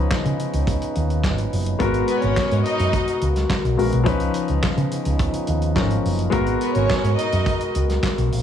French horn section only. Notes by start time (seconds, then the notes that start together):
Already playing: C#3 F3 B3 D#4
1.81 B2 G#3 F#4 A#4
4.06 C#3 F3 B3 D#4
6.33 B2 G#3 F#4 A#4